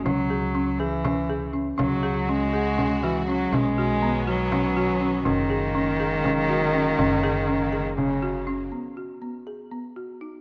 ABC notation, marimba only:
X:1
M:7/8
L:1/8
Q:1/4=121
K:G#m
V:1 name="Marimba"
C G C G C G C | C G C G C F C | C F B, F C F C | C G C G C F C |
C G C G C F C | B, F B, G B, F D |]